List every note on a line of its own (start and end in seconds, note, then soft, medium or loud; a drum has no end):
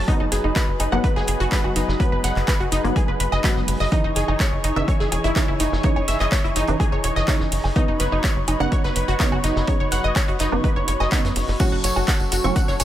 0.00 3.88 F#3 medium
0.08 0.89 G#2 medium
0.08 0.89 F#3 medium
0.08 0.89 B3 medium
0.08 0.16 D#4 loud
0.08 3.88 D#4 medium
0.08 3.88 G#4 medium
0.08 3.88 B4 medium
0.08 0.16 D#5 medium
0.08 kick loud
0.08 closed hi-hat medium
0.20 0.27 F#1 medium
0.20 0.31 D#4 medium
0.20 0.31 D#5 medium
0.32 0.40 F#1 medium
0.32 0.40 G#4 medium
0.32 0.40 G#5 medium
0.32 snare soft
0.32 closed hi-hat medium
0.32 closed hi-hat loud
0.44 0.51 F#1 medium
0.44 0.49 D#4 medium
0.44 0.49 D#5 medium
0.56 0.64 B4 loud
0.56 0.64 B5 medium
0.56 kick loud
0.56 snare loud
0.56 clap loud
0.56 closed hi-hat medium
0.68 0.76 F#1 medium
0.79 0.88 F#1 loud
0.79 0.91 D#4 medium
0.79 0.91 D#5 medium
0.79 closed hi-hat medium
0.79 closed hi-hat loud
0.79 low woodblock soft
0.92 0.99 F#1 medium
0.92 1.49 G#2 medium
0.92 1.49 F#3 medium
0.92 1.49 B3 medium
0.92 1.00 F#5 loud
0.92 1.00 F#6 medium
1.04 1.12 B4 medium
1.04 1.12 B5 medium
1.04 kick loud
1.04 closed hi-hat medium
1.16 1.23 F#1 medium
1.16 1.21 G#4 loud
1.16 1.21 G#5 medium
1.16 snare medium
1.27 1.36 F#1 loud
1.27 1.36 G#4 medium
1.27 1.36 G#5 medium
1.27 closed hi-hat medium
1.27 closed hi-hat loud
1.40 1.47 F#1 medium
1.40 1.48 F#4 loud
1.40 1.48 F#5 medium
1.40 closed hi-hat soft
1.52 1.97 G#2 medium
1.52 1.97 F#3 medium
1.52 1.97 B3 medium
1.52 1.60 B4 loud
1.52 1.60 B5 medium
1.52 kick loud
1.52 snare loud
1.52 clap loud
1.52 closed hi-hat medium
1.64 1.71 F#1 medium
1.64 1.75 F#4 medium
1.64 1.75 F#5 medium
1.64 low woodblock soft
1.76 1.84 F#1 medium
1.76 1.88 D#4 medium
1.76 1.87 D#5 medium
1.76 snare soft
1.76 closed hi-hat medium
1.76 closed hi-hat loud
1.88 1.96 F#1 medium
1.88 snare medium
2.00 2.81 G#2 medium
2.00 2.81 F#3 medium
2.00 2.81 B3 medium
2.00 2.08 B4 medium
2.00 2.08 B5 medium
2.00 kick loud
2.00 closed hi-hat medium
2.12 2.20 F#1 medium
2.12 2.23 B4 medium
2.12 2.23 B5 medium
2.24 2.32 F#1 medium
2.24 2.35 F#5 loud
2.24 2.35 F#6 medium
2.24 snare soft
2.24 closed hi-hat loud
2.24 closed hi-hat medium
2.36 2.43 F#1 medium
2.36 clap soft
2.47 2.56 B4 loud
2.47 2.56 B5 medium
2.47 kick loud
2.47 snare loud
2.47 clap loud
2.47 closed hi-hat medium
2.47 low woodblock soft
2.60 2.67 F#1 medium
2.60 2.71 F#4 medium
2.60 2.71 F#5 medium
2.60 closed hi-hat soft
2.72 2.80 F#1 loud
2.72 2.83 D#4 loud
2.72 2.83 D#5 medium
2.72 snare soft
2.72 closed hi-hat loud
2.72 closed hi-hat medium
2.84 2.91 F#1 medium
2.84 3.41 G#2 medium
2.84 3.41 F#3 medium
2.84 3.41 B3 medium
2.84 closed hi-hat soft
2.96 3.04 G#4 medium
2.96 3.04 G#5 medium
2.96 kick loud
2.96 closed hi-hat medium
3.08 3.15 F#1 medium
3.08 3.19 B4 medium
3.08 3.19 B5 medium
3.20 3.28 F#1 loud
3.20 3.31 B4 medium
3.20 3.31 B5 medium
3.20 closed hi-hat medium
3.20 closed hi-hat loud
3.32 3.40 F#1 medium
3.32 3.40 D#5 loud
3.32 3.40 D#6 medium
3.32 snare soft
3.32 low woodblock soft
3.44 3.89 G#2 medium
3.44 3.89 F#3 medium
3.44 3.89 B3 medium
3.44 3.52 B4 loud
3.44 3.52 B5 medium
3.44 kick loud
3.44 snare loud
3.44 clap loud
3.44 closed hi-hat loud
3.56 3.64 F#1 medium
3.56 snare soft
3.68 3.76 F#1 loud
3.68 closed hi-hat loud
3.68 open hi-hat medium
3.80 3.88 F#1 medium
3.80 3.85 D#5 loud
3.80 3.85 D#6 medium
3.80 snare medium
3.92 4.73 C#3 medium
3.92 7.72 E3 medium
3.92 4.73 E3 medium
3.92 11.56 D#4 medium
3.92 4.00 D#4 loud
3.92 4.73 D#4 medium
3.92 7.72 G#4 medium
3.92 7.72 C#5 medium
3.92 4.00 D#5 medium
3.92 kick loud
3.92 closed hi-hat medium
4.04 4.12 F#1 medium
4.04 4.15 D#4 medium
4.04 4.15 D#5 medium
4.16 4.24 F#1 loud
4.16 4.24 G#4 medium
4.16 4.24 G#5 medium
4.16 snare soft
4.16 closed hi-hat loud
4.16 closed hi-hat medium
4.28 4.36 F#1 medium
4.28 4.33 D#4 medium
4.28 4.33 D#5 medium
4.28 low woodblock medium
4.40 4.48 C#5 loud
4.40 4.48 C#6 medium
4.40 kick loud
4.40 snare loud
4.40 clap loud
4.40 closed hi-hat medium
4.52 4.59 F#1 medium
4.64 4.72 F#1 loud
4.64 4.76 D#4 medium
4.64 4.76 D#5 medium
4.64 closed hi-hat medium
4.76 4.84 F#1 medium
4.76 5.33 C#3 medium
4.76 5.33 E3 medium
4.76 5.33 D#4 medium
4.76 4.84 E5 loud
4.76 4.84 E6 medium
4.88 4.96 C#5 medium
4.88 4.96 C#6 medium
4.88 kick loud
4.88 closed hi-hat medium
5.00 5.08 F#1 medium
5.00 5.05 G#4 loud
5.00 5.05 G#5 medium
5.00 snare medium
5.12 5.20 E1 loud
5.12 5.20 G#4 medium
5.12 5.20 G#5 medium
5.12 closed hi-hat loud
5.12 closed hi-hat medium
5.12 low woodblock medium
5.24 5.32 F#1 medium
5.24 5.32 E4 loud
5.24 5.32 E5 medium
5.24 closed hi-hat soft
5.36 5.81 C#3 medium
5.36 5.81 E3 medium
5.36 5.81 D#4 medium
5.36 5.44 C#5 loud
5.36 5.44 C#6 medium
5.36 kick loud
5.36 snare loud
5.36 clap loud
5.36 closed hi-hat medium
5.48 5.56 F#1 medium
5.48 5.59 E4 medium
5.48 5.59 E5 medium
5.60 5.68 F#1 loud
5.60 5.71 D#4 medium
5.60 5.71 D#5 medium
5.60 snare soft
5.60 closed hi-hat medium
5.60 closed hi-hat loud
5.72 5.80 F#1 medium
5.72 snare medium
5.83 6.65 C#3 medium
5.83 6.65 E3 medium
5.83 6.65 D#4 medium
5.83 5.92 C#5 medium
5.83 5.92 C#6 medium
5.83 kick loud
5.83 closed hi-hat medium
5.96 6.04 F#1 medium
5.96 6.07 C#5 medium
5.96 6.07 C#6 medium
5.96 low woodblock medium
6.08 6.16 F#1 medium
6.08 6.20 E5 loud
6.08 6.20 E6 medium
6.08 snare soft
6.08 closed hi-hat loud
6.08 closed hi-hat medium
6.20 6.28 F#1 medium
6.20 6.25 D#5 loud
6.20 6.25 D#6 medium
6.20 clap soft
6.32 6.40 C#5 loud
6.32 6.40 C#6 medium
6.32 kick loud
6.32 snare loud
6.32 clap loud
6.32 closed hi-hat loud
6.44 6.52 F#1 medium
6.44 6.55 E4 medium
6.44 6.55 E5 medium
6.44 closed hi-hat soft
6.56 6.64 F#1 loud
6.56 6.68 D#4 loud
6.56 6.68 D#5 medium
6.56 snare soft
6.56 closed hi-hat medium
6.67 6.76 F#1 medium
6.67 7.25 C#3 medium
6.67 7.25 E3 medium
6.67 7.25 D#4 medium
6.67 closed hi-hat soft
6.80 6.88 G#4 medium
6.80 6.88 G#5 medium
6.80 kick loud
6.80 closed hi-hat loud
6.80 low woodblock medium
6.92 7.00 F#1 medium
6.92 7.03 C#5 medium
6.92 7.03 C#6 medium
7.04 7.12 E1 loud
7.04 7.16 C#5 medium
7.04 7.16 C#6 medium
7.04 closed hi-hat loud
7.04 closed hi-hat medium
7.16 7.24 F#1 medium
7.16 7.24 D#5 loud
7.16 7.24 D#6 medium
7.16 snare medium
7.28 7.73 C#3 medium
7.28 7.73 E3 medium
7.28 7.73 D#4 medium
7.28 7.36 C#5 loud
7.28 7.36 C#6 medium
7.28 kick loud
7.28 snare loud
7.28 clap loud
7.28 closed hi-hat loud
7.40 7.48 F#1 medium
7.40 snare medium
7.52 7.60 F#1 loud
7.52 closed hi-hat medium
7.52 open hi-hat medium
7.63 7.72 F#1 medium
7.63 snare medium
7.63 low woodblock medium
7.76 8.57 C#3 medium
7.76 12.84 F#3 medium
7.76 8.57 B3 medium
7.76 7.84 D#4 loud
7.76 8.57 D#4 medium
7.76 11.56 B4 medium
7.76 12.84 C#5 medium
7.76 7.84 D#5 medium
7.76 kick loud
7.76 closed hi-hat medium
7.88 7.96 F#1 medium
7.88 7.99 D#4 medium
7.88 7.99 D#5 medium
7.99 8.08 F#1 loud
7.99 8.08 B4 medium
7.99 8.08 B5 medium
7.99 snare soft
7.99 closed hi-hat medium
7.99 closed hi-hat loud
8.12 8.20 F#1 medium
8.12 8.17 D#4 medium
8.12 8.17 D#5 medium
8.24 8.32 C#5 loud
8.24 8.32 C#6 medium
8.24 kick loud
8.24 snare loud
8.24 clap loud
8.24 closed hi-hat medium
8.36 8.44 F#1 medium
8.48 8.56 F#1 loud
8.48 8.59 D#4 medium
8.48 8.60 D#5 medium
8.48 closed hi-hat medium
8.48 low woodblock medium
8.60 8.68 F#1 medium
8.60 9.17 C#3 medium
8.60 9.17 B3 medium
8.60 9.17 D#4 medium
8.60 8.68 F#5 loud
8.60 8.68 F#6 medium
8.72 8.80 C#5 medium
8.72 8.80 C#6 medium
8.72 kick loud
8.72 closed hi-hat medium
8.84 8.91 F#1 medium
8.84 8.89 B4 loud
8.84 8.89 B5 medium
8.84 snare medium
8.96 9.04 F#1 loud
8.96 9.04 B4 medium
8.96 9.04 B5 medium
8.96 closed hi-hat loud
8.96 closed hi-hat medium
9.08 9.16 F#1 medium
9.08 9.16 F#4 loud
9.08 9.16 F#5 medium
9.08 closed hi-hat soft
9.19 9.65 C#3 medium
9.19 9.65 B3 medium
9.19 9.65 D#4 medium
9.19 9.28 C#5 loud
9.19 9.28 C#6 medium
9.19 kick loud
9.19 snare loud
9.19 clap loud
9.19 closed hi-hat medium
9.32 9.40 F#1 medium
9.32 9.43 F#4 medium
9.32 9.43 F#5 medium
9.32 low woodblock medium
9.44 9.52 F#1 loud
9.44 9.55 D#4 medium
9.44 9.55 D#5 medium
9.44 snare soft
9.44 closed hi-hat medium
9.56 9.63 F#1 medium
9.56 snare medium
9.67 10.49 C#3 medium
9.67 10.49 B3 medium
9.67 10.49 D#4 medium
9.67 9.76 C#5 medium
9.67 9.76 C#6 medium
9.67 kick loud
9.67 closed hi-hat medium
9.80 9.88 F#1 medium
9.80 9.91 C#5 medium
9.80 9.91 C#6 medium
9.92 10.00 F#1 loud
9.92 10.03 F#5 loud
9.92 10.03 F#6 medium
9.92 snare soft
9.92 closed hi-hat medium
9.92 closed hi-hat loud
10.04 10.12 F#1 medium
10.04 10.09 D#5 loud
10.04 10.09 D#6 medium
10.16 10.24 C#5 loud
10.16 10.24 C#6 medium
10.16 kick loud
10.16 snare loud
10.16 clap loud
10.16 closed hi-hat medium
10.16 low woodblock medium
10.28 10.36 F#1 medium
10.28 10.39 F#4 medium
10.28 10.39 F#5 medium
10.28 closed hi-hat soft
10.39 10.48 F#1 loud
10.39 10.51 D#4 loud
10.39 10.51 D#5 medium
10.39 snare loud
10.39 closed hi-hat medium
10.52 10.60 F#1 medium
10.52 11.09 C#3 medium
10.52 11.09 B3 medium
10.52 11.09 D#4 medium
10.64 10.72 B4 medium
10.64 10.72 B5 medium
10.64 kick loud
10.64 closed hi-hat medium
10.76 10.84 F#1 medium
10.76 10.87 C#5 medium
10.76 10.87 C#6 medium
10.88 10.96 F#1 loud
10.88 10.99 C#5 medium
10.88 10.99 C#6 medium
10.88 closed hi-hat medium
10.88 closed hi-hat loud
11.00 11.07 F#1 medium
11.00 11.08 D#5 loud
11.00 11.08 D#6 medium
11.00 snare soft
11.00 low woodblock medium
11.11 11.57 C#3 medium
11.11 11.57 B3 medium
11.11 11.57 D#4 medium
11.11 11.20 C#5 loud
11.11 11.20 C#6 medium
11.11 kick loud
11.11 snare loud
11.11 clap loud
11.11 closed hi-hat medium
11.24 11.32 F#2 medium
11.24 snare loud
11.24 closed hi-hat medium
11.36 11.44 F#1 loud
11.36 snare soft
11.36 closed hi-hat medium
11.36 open hi-hat medium
11.47 11.55 F#1 medium
11.47 snare soft
11.60 12.41 A2 medium
11.60 12.41 F#3 medium
11.60 12.84 C#4 medium
11.60 12.41 C#4 medium
11.60 11.68 F#4 loud
11.60 12.84 A4 medium
11.60 11.68 F#5 medium
11.60 kick loud
11.60 closed hi-hat medium
11.60 crash medium
11.60 ride medium
11.60 tambourine medium
11.72 11.79 F#1 medium
11.72 11.83 F#4 medium
11.72 11.83 F#5 medium
11.84 11.92 F#1 medium
11.84 11.92 C#5 medium
11.84 11.92 C#6 medium
11.84 snare soft
11.84 closed hi-hat medium
11.84 closed hi-hat loud
11.84 tambourine loud
11.96 12.04 F#1 medium
11.96 12.01 F#4 medium
11.96 12.01 F#5 medium
11.96 tambourine soft
11.96 low woodblock medium
12.07 12.16 F#5 loud
12.07 12.16 F#6 medium
12.07 kick loud
12.07 snare loud
12.07 clap loud
12.07 closed hi-hat medium
12.07 ride medium
12.07 tambourine soft
12.20 12.28 F#1 medium
12.20 tambourine soft
12.32 12.40 F#1 loud
12.32 12.44 F#4 medium
12.32 12.44 F#5 medium
12.32 closed hi-hat loud
12.32 closed hi-hat medium
12.32 tambourine medium
12.44 12.52 F#1 medium
12.44 12.84 A2 medium
12.44 12.84 F#3 medium
12.44 12.84 C#4 medium
12.44 12.52 C#6 loud
12.44 tambourine soft
12.56 12.64 F#5 medium
12.56 12.64 F#6 medium
12.56 kick loud
12.56 closed hi-hat medium
12.56 ride medium
12.56 tambourine medium
12.68 12.76 F#1 medium
12.68 12.73 C#5 loud
12.68 12.73 C#6 medium
12.68 snare medium
12.68 tambourine soft
12.80 12.84 E1 loud
12.80 12.84 C#5 medium
12.80 12.84 C#6 medium
12.80 closed hi-hat loud
12.80 closed hi-hat medium
12.80 tambourine loud
12.80 low woodblock medium